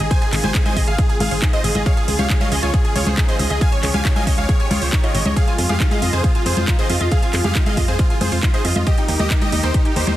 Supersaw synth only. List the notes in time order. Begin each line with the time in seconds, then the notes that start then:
0.11 C5 G#5
0.22 G#4
0.33 G#4
0.44 C5 G#5
0.54 G#4
0.65 C5 G#5
0.76 G#4
0.87 G#4 F5
0.98 G#4
1.09 G#4
1.20 G#4 F5
1.31 G#4
1.42 G#4
1.53 C5 D#5
1.64 G#4
1.75 G#4
1.86 C#5 F5
1.97 G#4
2.08 G#4
2.19 C#5 F5
2.30 G#4
2.41 C#5 F5
2.51 G#4
2.63 F4 C#5
2.73 G#4
2.84 G#4
2.96 F4 C#5
3.06 G#4
3.17 G#4
3.28 G#4 C5
3.39 G#4
3.50 G#4
3.61 F5 G#5
3.72 C#5
3.83 C#5
3.94 F5 G#5
4.05 C#5
4.16 F5 G#5
4.27 C#5
4.38 C#5 F5
4.49 C#5
4.60 C#5
4.71 F4 C#5
4.82 C#5
4.93 C#5
5.04 F4 C#5
5.15 C#5
5.25 C#5
5.36 G#4 F5
5.47 F4
5.58 F4
5.69 G#4 F5
5.80 F4
5.91 G#4 F5
6.02 F4
6.13 G#4 C5
6.24 F4
6.35 F4
6.46 G#4 C5
6.57 F4
6.68 F4
6.79 G#4 C5
6.90 F4
7.01 F4
7.12 G#4 F5
7.23 F4
7.34 F4
7.45 G#4 F5
7.55 F4
7.66 G#4 F5
7.77 F4
7.88 G#4 C5
7.99 F4
8.10 F4
8.21 G#4 C5
8.32 F4
8.43 F4
8.54 G#4 C5
8.65 F4
8.76 F4
8.87 G4 D#5
8.98 D#4
9.09 D#4
9.20 G4 D#5
9.30 D#4
9.42 G4 D#5
9.52 D#4
9.63 D#4 C5
9.85 D#4
9.96 D#4 C5
10.07 D#4